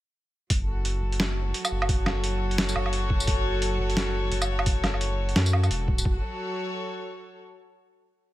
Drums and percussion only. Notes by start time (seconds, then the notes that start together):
0.50 kick, closed hi-hat
0.85 closed hi-hat
1.12 closed hi-hat
1.20 snare, closed hi-hat
1.54 closed hi-hat
1.65 tambourine, low woodblock
1.82 low woodblock
1.89 kick, closed hi-hat
2.06 snare, low woodblock
2.24 closed hi-hat
2.51 closed hi-hat
2.58 snare, closed hi-hat
2.69 tambourine
2.76 low woodblock
2.86 low woodblock
2.93 closed hi-hat
3.10 kick
3.20 tambourine
3.27 kick, closed hi-hat
3.62 closed hi-hat
3.90 closed hi-hat
3.97 snare, closed hi-hat
4.32 closed hi-hat
4.42 tambourine, low woodblock
4.59 low woodblock
4.66 kick, closed hi-hat
4.84 snare, closed hi-hat, low woodblock
4.94 low woodblock
5.01 closed hi-hat
5.29 closed hi-hat
5.36 snare, closed hi-hat
5.46 tambourine
5.53 low woodblock
5.63 tambourine, low woodblock
5.71 closed hi-hat
5.88 kick
5.98 tambourine
6.05 kick